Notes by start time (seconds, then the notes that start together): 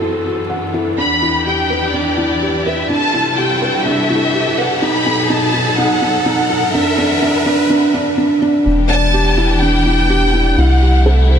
Already playing: F#2 E3 C4 E4 F#4 A4, riser
0.02 E4
0.26 F#4
0.50 F#5
0.74 E4
0.98 E2 D4 G4 B5
1.22 E4
1.46 G4 G5
1.70 B4
1.94 D4 D5
2.18 E4
2.42 G4
2.66 B4 E5
2.90 C3 G3 D4 E4 A4 A5
3.14 E4
3.38 G4 G5
3.62 B4
3.86 D4 E5
4.10 E4
4.34 G4
4.58 B4 F#5
4.82 B2 F#3 D#4 B5
5.06 D#4
5.30 D#4 A5
5.54 D#4
5.78 D#4 F#5
6.02 D#4
6.26 D#4 F#5
6.50 D#4
6.73 F#2 E3 C4 D4 A4 E5
6.98 D4
7.22 D4
7.46 D4
7.70 D4
7.94 D4
8.18 D4
8.42 D4
8.66 E1 E3 B3 D4 G4
8.90 D5 A5
9.14 G4
9.38 E4
9.61 D4 G5
9.86 E4
10.10 G4
10.34 E4
10.58 C2 C3 G3 A3 E4 F#5
10.82 G4
11.06 A4
11.30 C5